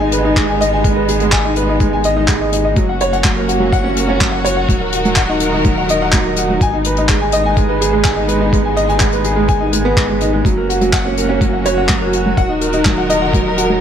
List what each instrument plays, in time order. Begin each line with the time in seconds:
Already playing: sub bass G#1, upright piano G#3 G#4 B4 D#5 G#5, string section G#3 B3 D#4
0.01 upright piano D#4
0.12 upright piano B4, closed hi-hat
0.25 upright piano D#4
0.37 upright piano G#3, kick, clap, closed hi-hat
0.49 upright piano G#5
0.61 upright piano D#5, closed hi-hat
0.73 upright piano G#5
0.84 upright piano G#3, kick, closed hi-hat
0.96 upright piano B4
1.08 upright piano G#4, closed hi-hat
1.20 upright piano G#3, closed hi-hat
1.31 upright piano G#5, kick, clap, closed hi-hat
1.45 upright piano D#4
1.56 upright piano B4, closed hi-hat
1.69 upright piano D#4
1.80 upright piano G#3, kick, closed hi-hat
1.93 upright piano G#5
2.04 upright piano D#5, closed hi-hat
2.17 upright piano D#4
2.28 upright piano G#3, kick, clap, closed hi-hat
2.41 upright piano D#5
2.52 upright piano D#4, closed hi-hat
2.65 upright piano D#5
2.76 sub bass F#1, upright piano F#3, string section A#3 C#4 F#4, kick, closed hi-hat
2.89 upright piano F#5
3.00 upright piano C#5, closed hi-hat
3.13 upright piano F#5, closed hi-hat
3.24 upright piano F#3, kick, clap, closed hi-hat
3.36 upright piano A#4
3.48 upright piano F#4, closed hi-hat
3.60 upright piano F#3
3.73 upright piano F#5, kick, closed hi-hat
3.84 upright piano C#4
3.96 upright piano A#4, closed hi-hat
4.08 upright piano C#4
4.20 upright piano F#3, kick, clap, closed hi-hat
4.32 upright piano F#5
4.45 upright piano C#5, closed hi-hat
4.57 upright piano F#5
4.69 sub bass D#1, string section D#3 D#4 A#4, upright piano F#3, kick, closed hi-hat
4.81 upright piano A#4
4.92 upright piano F#4, closed hi-hat
5.05 upright piano F#3, closed hi-hat
5.16 upright piano F#5, kick, clap, closed hi-hat
5.29 upright piano D#4
5.40 upright piano A#4, closed hi-hat
5.54 upright piano D#4
5.64 upright piano F#3, kick, closed hi-hat
5.78 upright piano F#5
5.89 upright piano D#5, closed hi-hat
6.02 upright piano F#5
6.12 upright piano F#3, kick, clap, closed hi-hat
6.26 upright piano A#4
6.36 upright piano F#4, closed hi-hat
6.50 upright piano F#3
6.61 sub bass G#1, string section G#3 B3, upright piano G#5, kick, closed hi-hat
6.74 upright piano D#4
6.84 upright piano B4, closed hi-hat
6.97 upright piano D#4, closed hi-hat
7.08 upright piano G#3, kick, clap, closed hi-hat
7.21 upright piano G#5
7.32 upright piano D#5, closed hi-hat
7.46 upright piano G#5
7.56 upright piano G#3, kick, closed hi-hat
7.69 upright piano B4
7.81 upright piano G#4, closed hi-hat
7.93 upright piano G#3
8.04 upright piano G#5, kick, clap, closed hi-hat
8.17 upright piano D#4
8.28 upright piano B4, closed hi-hat
8.41 upright piano D#4
8.53 upright piano G#3, kick, closed hi-hat
8.65 upright piano G#5
8.77 upright piano D#5, closed hi-hat
8.89 upright piano G#5, closed hi-hat
9.00 upright piano G#3, kick, clap, closed hi-hat
9.12 upright piano B4, closed hi-hat
9.24 upright piano G#4, closed hi-hat
9.36 upright piano G#3
9.48 upright piano G#5, kick, closed hi-hat
9.61 upright piano D#4
9.73 upright piano G#3, closed hi-hat
9.85 upright piano B3
9.97 upright piano G#3, kick, clap, closed hi-hat
10.09 upright piano G#3
10.20 upright piano D#4, closed hi-hat
10.33 upright piano G#3
10.45 sub bass F#1, upright piano F#3, string section A#3 C#4 F#4, kick, closed hi-hat
10.57 upright piano A#4
10.69 upright piano F#4, closed hi-hat
10.81 upright piano F#3, closed hi-hat
10.93 upright piano F#5, kick, clap, closed hi-hat
11.05 upright piano C#4
11.17 upright piano A#4, closed hi-hat
11.29 upright piano C#4
11.41 upright piano F#3, kick, closed hi-hat
11.53 upright piano F#5
11.65 upright piano C#5, closed hi-hat
11.78 upright piano F#5
11.89 upright piano F#3, kick, clap, closed hi-hat
12.02 upright piano A#4
12.13 upright piano F#4, closed hi-hat
12.26 upright piano F#3
12.37 sub bass D#1, string section D#3 D#4 A#4, upright piano F#5, kick, closed hi-hat
12.49 upright piano D#4
12.61 upright piano A#4, closed hi-hat
12.72 upright piano D#4, closed hi-hat
12.85 upright piano F#3, kick, clap, closed hi-hat
12.98 upright piano F#5
13.10 upright piano D#5, closed hi-hat
13.22 upright piano F#5
13.34 upright piano F#3, kick, closed hi-hat
13.46 upright piano A#4
13.57 upright piano F#4, closed hi-hat
13.70 upright piano F#3